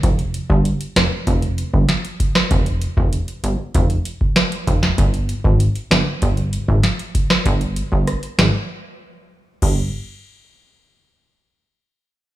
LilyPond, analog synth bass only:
\new Staff \with { instrumentName = "Analog synth bass" } { \clef bass \time 4/4 \key f \dorian \tempo 4 = 97 f,,8. g,,8 r16 f,,16 r16 f,,8. g,,16 r4 | f,,8. f,,8 r16 g,,16 r16 f,,8 r4 f,,8 | g,,8. aes,,8 r16 g,,16 r16 g,,8. aes,,16 r4 | g,,8. g,,8 r16 aes,,16 r4. r16 g,,8 |
r1 | }